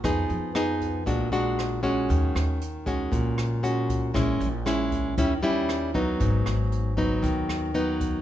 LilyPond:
<<
  \new Staff \with { instrumentName = "Nylon-string guitar" } { \time 4/4 \key ees \minor \tempo 4 = 117 << { <ces' ees' aes'>4 <ces' ees' aes'>4 <aes d' fis'>8 <aes d' fis'>4 <aes cis' fis'>8~ | <aes cis' fis'>4 r8 <aes des' ges'>4. <aes des' ges'>4 | <aes des' fes'>8 r8 <aes des' fes'>4 <g des' fes'>8 <g des' fes'>4 <ges ces' ees'>8~ | <ges ces' ees'>4. <ges ces' ees'>4. <ges ces' ees'>4 | } \\ { f2 bes,2 | ees2 bes,2 | bes,2 ees2 | aes,2 ees2 | } >> }
  \new Staff \with { instrumentName = "Upright bass" } { \clef bass \time 4/4 \key ees \minor f,8 f,4. bes,,2 | ees,8 ees,4. bes,,2 | bes,,8 bes,,4. ees,2 | aes,,8 aes,,4. ees,2 | }
  \new DrumStaff \with { instrumentName = "Drums" } \drummode { \time 4/4 <hh bd ss>8 hh8 <hh ss>8 <hh bd>8 <hh bd>8 hh8 <hh ss>8 <hh bd>8 | <hh bd>8 <hh ss>8 hh8 <hh bd>8 <hh bd>8 <hh ss>8 hh8 <hh bd>8 | <hh bd ss>8 hh8 <hh ss>8 <hh bd>8 <hh bd>8 hh8 <hh ss>8 <hh bd>8 | <hh bd>8 <hh ss>8 hh8 <hh bd>8 <hh bd>8 <hh ss>8 hh8 <hh bd>8 | }
>>